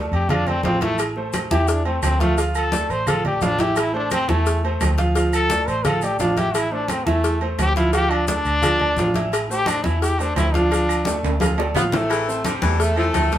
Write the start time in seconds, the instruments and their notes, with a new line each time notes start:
Already playing: upright piano A3 A4 D5
0.12 fingered electric bass F2, trombone G4, high conga, low agogo
0.29 upright piano F3 F4 F5, trombone D4, cowbell, high conga, low conga, low agogo, claves
0.47 upright piano A3 A4 D5, trombone C4, high conga, low conga, low agogo
0.63 fingered electric bass A1, upright piano F3 F4 F5, trombone C4, cowbell, high conga, low timbale
0.81 upright piano E3 E4 E5, trombone A3, cowbell, high conga, low agogo
0.98 cowbell, high conga, low agogo, claves, maracas
1.16 upright piano A3 A4 C5, high conga
1.33 cowbell, high conga, low timbale, low agogo, claves, maracas
1.51 fingered electric bass E2, upright piano E3 E4 E5, trombone G4, high conga, low agogo, maracas
1.68 trombone D4, cowbell, high conga, maracas
1.85 upright piano A3 A4 C5, trombone C4, high conga, low agogo
2.03 fingered electric bass D2, trombone C4, cowbell, high conga, low timbale, low agogo, claves, maracas
2.20 upright piano F3 F4 F5, trombone A3, cowbell, high conga, maracas
2.38 upright piano F3 F4 F5, cowbell, low agogo, maracas
2.55 trombone A4, high conga, low agogo, claves, maracas
2.72 upright piano A3 A4 D5, cowbell, high conga, low timbale, maracas
2.89 fingered electric bass A1, trombone C5, high conga, low agogo, maracas
3.07 upright piano F3 F4 F5, trombone A4, cowbell, high conga, low conga, low agogo, claves, maracas
3.25 upright piano A3 A4 D5, trombone G4, high conga, low conga, low agogo
3.41 fingered electric bass A1, upright piano F3 F4 F5, trombone D4, cowbell, high conga, low timbale, maracas
3.59 upright piano E3 E4 E5, trombone G4, cowbell, high conga, low agogo, maracas
3.76 trombone E4, cowbell, high conga, low agogo, claves, maracas
3.93 upright piano A3 A4 C5, trombone D4, high conga
4.11 trombone C4, cowbell, high conga, low timbale, low agogo, claves, maracas
4.28 fingered electric bass E2, upright piano E3 E4 E5, trombone A3, high conga, low agogo, maracas
4.46 cowbell, high conga, maracas
4.63 upright piano A3 A4 C5, high conga, low agogo
4.81 fingered electric bass D2, cowbell, high conga, low timbale, low agogo, claves, maracas
4.98 upright piano F3 F4 F5, cowbell, high conga, maracas
5.15 upright piano F3 F4 F5, cowbell, low agogo, maracas
5.33 trombone A4, high conga, low agogo, claves, maracas
5.50 upright piano A3 A4 D5, cowbell, high conga, low timbale, maracas
5.68 fingered electric bass A1, trombone C5, high conga, low agogo, maracas
5.85 upright piano F3 F4 F5, trombone A4, cowbell, high conga, low conga, low agogo, claves, maracas
6.02 upright piano A3 A4 D5, trombone G4, high conga, low agogo, maracas
6.19 fingered electric bass A1, upright piano F3 F4 F5, trombone D4, cowbell, high conga, low timbale, maracas
6.37 upright piano E3 E4 E5, trombone G4, cowbell, high conga, low agogo, maracas
6.54 trombone E4, cowbell, high conga, low agogo, claves, maracas
6.71 upright piano A3 A4 C5, trombone D4, high conga
6.88 trombone C4, cowbell, high conga, low timbale, low agogo, claves, maracas
7.06 fingered electric bass E2, upright piano E3 E4 E5, trombone A3, high conga, low agogo, maracas
7.24 cowbell, high conga, maracas
7.41 upright piano A3 A4 C5, high conga, low agogo
7.59 fingered electric bass D2, trombone G4, cowbell, high conga, low timbale, low agogo, claves, maracas
7.76 upright piano F3 F4 F5, trombone E4, cowbell, high conga, maracas
7.93 upright piano F3 F4 F5, trombone G4, cowbell, low agogo, maracas
8.10 trombone D4, high conga, low agogo, claves
8.28 upright piano A3 A4 D5, trombone D4, cowbell, high conga, low timbale, maracas
8.45 fingered electric bass D2, high conga, low agogo, maracas
8.62 upright piano F3 F4 F5, cowbell, high conga, low conga, low agogo, claves, maracas
8.79 upright piano A3 A4 D5, high conga, low conga, low agogo
8.97 fingered electric bass A1, upright piano F3 F4 F5, cowbell, high conga, low timbale, maracas
9.14 upright piano E3 E4 E5, cowbell, high conga, low agogo, maracas
9.32 cowbell, high conga, low agogo, claves, maracas
9.49 upright piano A3 A4 C5, trombone G4, high conga, maracas
9.66 trombone D4, cowbell, high conga, low timbale, low agogo, claves, maracas
9.84 fingered electric bass E2, upright piano E3 E4 E5, trombone E4, high conga, low agogo, maracas
10.02 trombone G4, cowbell, high conga, maracas
10.19 upright piano A3 A4 C5, trombone D4, high conga, low agogo, maracas
10.36 fingered electric bass D2, trombone E4, cowbell, high conga, low timbale, low agogo, claves, maracas
10.54 upright piano F3 F4 F5, trombone D4, cowbell, high conga, maracas
10.71 upright piano F3 F4 F5, cowbell, high conga, low agogo, maracas
10.88 high conga, low agogo, claves, maracas
11.05 upright piano A3 A4 D5, cowbell, high conga, high timbale, maracas
11.23 fingered electric bass D2, high conga, high timbale, low agogo, maracas
11.40 upright piano F3 F4 F5, cowbell, high conga, high timbale, low agogo, claves, maracas
11.58 upright piano A3 A4 D5, high bongo, low timbale, low agogo
11.75 fingered electric bass A1, upright piano F3 F4 F5, horn section B3, cowbell, high bongo, low conga, low timbale, maracas
11.92 horn section C3 E3 A3, upright piano E3 E4 E5, cowbell, low bongo, low conga, low timbale, low agogo, maracas
12.10 baritone saxophone E3, cowbell, high conga, low agogo, maracas
12.28 upright piano C4 C5 C6, high conga, maracas
12.45 horn section C3 E3 G3, baritone saxophone D3, cowbell, high conga, low timbale, low agogo, maracas
12.62 fingered electric bass E2, baritone saxophone E3, upright piano A3 A4 A5, high conga, low agogo, maracas
12.79 horn section C3 E3 A3, cowbell, high conga, maracas
12.96 horn section C3 E3 A3, upright piano E3 E4 E5, baritone saxophone F3, high conga, low agogo
13.14 fingered electric bass D2, baritone saxophone A3, cowbell, high conga, low timbale, low agogo, maracas
13.32 horn section F3 A3 D4, upright piano A3 A4 A5, cowbell, high conga, maracas